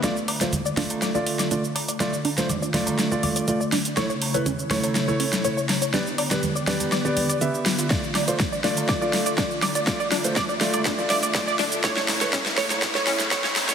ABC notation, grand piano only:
X:1
M:4/4
L:1/16
Q:1/4=122
K:Ddor
V:1 name="Grand piano"
[A,Fd] z2 [A,Fc] z2 [A,Fd]3 [A,Fd]3 [A,Fd] z3 | [A,Fd] z2 [A,Fc] z2 [A,Fd]3 [A,Fd]3 [A,Fd] z3 | [A,E^c] z2 [A,EB] z2 [A,Ec]3 [A,Ec]3 [A,Ec] z3 | [B,Gd] z2 [B,GB] z2 [B,Gd]3 [B,Gd]3 [B,Ge]4 |
[A,Fd] z2 [A,Fc] z2 [A,Fd]3 [A,Fd]3 [A,Fd] z3 | [A,Fd] z2 [A,Fc] z2 [A,Fd]3 [A,Fd]3 [A,Fd] z3 | [A,E^c] z2 [A,EB] z2 [A,Ec]3 [A,Ec]3 [A,Ec] z3 |]